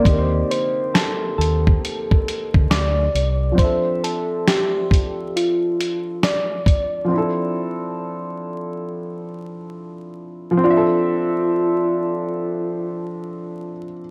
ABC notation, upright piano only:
X:1
M:4/4
L:1/8
Q:"Swing 16ths" 1/4=68
K:Dm
V:1 name="Upright piano"
[B,C_EGBc]8 | [F,CDAe]8 | [F,CDEA]8 | [F,CDAe]8 |]